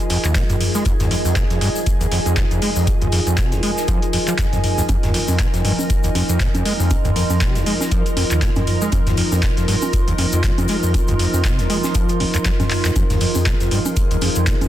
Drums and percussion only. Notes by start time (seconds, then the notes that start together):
0.10 closed hi-hat, open hi-hat
0.24 clap, closed hi-hat, shaker
0.35 kick, snare, clap, closed hi-hat, shaker
0.49 snare, closed hi-hat, mid tom, shaker
0.61 closed hi-hat, mid tom, open hi-hat
0.75 shaker
0.85 kick, closed hi-hat, shaker
1.00 snare, closed hi-hat, mid tom, shaker
1.11 closed hi-hat, open hi-hat
1.25 closed hi-hat, shaker
1.36 kick, snare, clap, closed hi-hat, shaker
1.50 snare, closed hi-hat, shaker
1.61 closed hi-hat, open hi-hat
1.76 closed hi-hat, shaker
1.86 kick, closed hi-hat, shaker
2.01 closed hi-hat, shaker
2.11 closed hi-hat, open hi-hat
2.26 closed hi-hat, shaker
2.36 kick, snare, clap, closed hi-hat, shaker
2.51 closed hi-hat, shaker
2.62 closed hi-hat, open hi-hat
2.76 shaker
2.87 kick, closed hi-hat, shaker
3.02 closed hi-hat, mid tom, shaker
3.12 closed hi-hat, open hi-hat
3.27 closed hi-hat, shaker
3.37 kick, snare, clap, closed hi-hat, shaker
3.52 snare, closed hi-hat, shaker
3.63 closed hi-hat, open hi-hat
3.77 snare, shaker
3.88 kick, closed hi-hat, shaker
4.02 closed hi-hat, shaker
4.13 closed hi-hat, open hi-hat
4.28 clap, shaker
4.38 kick, snare, clap, closed hi-hat, shaker
4.53 snare, closed hi-hat, mid tom, shaker
4.64 closed hi-hat, mid tom, open hi-hat
4.78 shaker
4.89 kick, closed hi-hat, high conga, shaker
5.03 snare, closed hi-hat, mid tom, shaker
5.14 closed hi-hat, open hi-hat
5.28 closed hi-hat, high conga, shaker
5.39 kick, snare, clap, closed hi-hat, shaker
5.54 snare, closed hi-hat, shaker
5.65 closed hi-hat, open hi-hat
5.79 closed hi-hat, high conga, shaker
5.90 kick, closed hi-hat, shaker
6.03 closed hi-hat, shaker
6.15 closed hi-hat, open hi-hat, high conga
6.29 closed hi-hat, shaker
6.40 kick, snare, clap, closed hi-hat, shaker
6.55 closed hi-hat, high conga, shaker
6.65 closed hi-hat, open hi-hat
6.80 shaker
6.90 kick, closed hi-hat, high conga, shaker
7.05 closed hi-hat, mid tom, shaker
7.16 closed hi-hat, open hi-hat
7.30 high conga, shaker
7.41 kick, snare, clap, closed hi-hat, shaker
7.55 snare, closed hi-hat, shaker
7.66 closed hi-hat, open hi-hat
7.81 snare, high conga, shaker
7.91 kick, closed hi-hat, shaker
8.06 closed hi-hat, shaker
8.17 closed hi-hat, open hi-hat, high conga
8.31 clap, closed hi-hat, shaker
8.42 kick, snare, clap, closed hi-hat, shaker
8.56 snare, closed hi-hat, mid tom, high conga, shaker
8.67 closed hi-hat, mid tom, open hi-hat
8.82 shaker
8.92 kick, closed hi-hat, high conga, shaker
9.07 snare, closed hi-hat, mid tom, shaker
9.17 closed hi-hat, open hi-hat
9.32 closed hi-hat, high conga, shaker
9.43 kick, snare, clap, closed hi-hat, shaker
9.57 snare, closed hi-hat, shaker
9.68 closed hi-hat, open hi-hat
9.82 closed hi-hat, high conga, shaker
9.93 kick, closed hi-hat, shaker
10.08 closed hi-hat, shaker
10.18 closed hi-hat, open hi-hat, high conga
10.33 closed hi-hat, shaker
10.43 kick, snare, clap, closed hi-hat, shaker
10.58 closed hi-hat, high conga, shaker
10.68 closed hi-hat, open hi-hat
10.83 shaker
10.94 kick, closed hi-hat, high conga, shaker
11.07 closed hi-hat, mid tom, shaker
11.19 closed hi-hat, open hi-hat
11.34 high conga, shaker
11.45 kick, snare, clap, closed hi-hat, shaker
11.58 snare, closed hi-hat, shaker
11.70 closed hi-hat, open hi-hat
11.84 snare, high conga, shaker
11.94 kick, closed hi-hat, shaker
12.09 closed hi-hat, shaker
12.20 open hi-hat, high conga
12.34 clap, closed hi-hat, shaker
12.45 kick, snare, clap, closed hi-hat, shaker
12.60 snare, closed hi-hat, mid tom, high conga, shaker
12.71 snare, clap, closed hi-hat, mid tom, open hi-hat
12.85 snare, clap, closed hi-hat, shaker
12.96 kick, closed hi-hat, high conga, shaker
13.10 snare, closed hi-hat, mid tom, shaker
13.21 closed hi-hat, open hi-hat
13.35 closed hi-hat, high conga, shaker
13.46 kick, snare, clap, closed hi-hat, shaker
13.60 snare, closed hi-hat, shaker
13.71 closed hi-hat, open hi-hat
13.85 closed hi-hat, high conga, shaker
13.97 kick, closed hi-hat, shaker
14.11 closed hi-hat, shaker
14.21 closed hi-hat, open hi-hat, high conga
14.36 closed hi-hat, shaker
14.47 kick, snare, clap, closed hi-hat, shaker
14.61 closed hi-hat, high conga, shaker